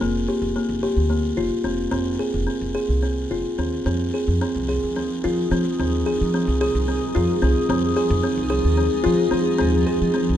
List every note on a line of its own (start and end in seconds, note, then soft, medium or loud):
0.01 0.25 F1 medium
0.01 0.18 A#3 medium
0.28 0.45 G4 medium
0.42 0.54 F1 medium
0.56 0.72 A#3 medium
0.69 0.81 F1 medium
0.83 1.00 G4 medium
0.96 1.32 D2 medium
1.10 1.26 A#3 medium
1.37 1.49 F1 medium
1.37 1.54 F4 medium
1.64 1.88 F1 medium
1.64 1.81 C4 medium
1.91 2.16 F1 medium
1.91 2.09 C4 medium
2.19 2.36 G#4 medium
2.34 2.46 F1 medium
2.47 2.64 C4 medium
2.61 2.73 F1 medium
2.75 2.92 G#4 medium
2.89 3.25 C2 medium
3.03 3.20 C4 medium
3.31 3.43 F1 medium
3.31 3.48 F4 medium
3.59 3.82 D#2 medium
3.59 3.76 C4 medium
3.85 4.10 F2 medium
3.85 10.37 F3 medium
3.85 4.03 C4 medium
3.85 10.37 D#4 medium
3.85 10.37 G#4 medium
4.14 4.31 G#4 medium
4.28 4.40 F2 medium
4.41 4.58 C4 medium
4.56 4.79 C2 medium
4.69 4.86 G#4 medium
4.84 5.07 D#2 medium
4.96 5.13 C4 medium
5.24 5.48 F3 medium
5.24 5.41 F4 medium
5.51 5.63 F3 medium
5.51 5.68 C4 medium
5.79 6.03 D#2 medium
5.79 5.96 C4 medium
6.06 6.23 G#4 medium
6.21 6.44 F3 medium
6.34 6.51 C4 medium
6.48 6.71 C2 medium
6.61 6.78 G#4 medium
6.75 6.98 C2 medium
6.88 7.05 C4 medium
7.15 7.27 F2 medium
7.15 7.32 F4 medium
7.42 7.54 C2 medium
7.42 7.59 C4 medium
7.69 7.92 F2 medium
7.69 7.86 C4 medium
7.96 8.13 G#4 medium
8.10 8.22 F2 loud
8.23 8.40 C4 medium
8.37 8.60 C2 medium
8.50 8.67 G#4 medium
8.65 8.88 D#2 medium
8.77 8.94 C4 medium
9.04 9.29 F3 medium
9.04 9.21 F4 medium
9.31 9.44 F3 medium
9.31 9.48 C4 medium
9.58 9.83 D#2 medium
9.58 9.76 C4 medium
9.87 10.04 G#4 medium
10.02 10.25 F3 medium
10.14 10.31 C4 medium
10.29 10.37 C2 medium